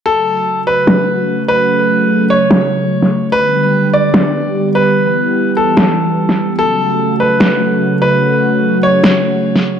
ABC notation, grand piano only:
X:1
M:4/4
L:1/8
Q:"Swing 16ths" 1/4=147
K:F#phr
V:1 name="Grand piano"
A3 B4 B- | B3 c4- c | B3 d4 B- | B3 A4- A |
A3 B4 B- | B3 c4- c |]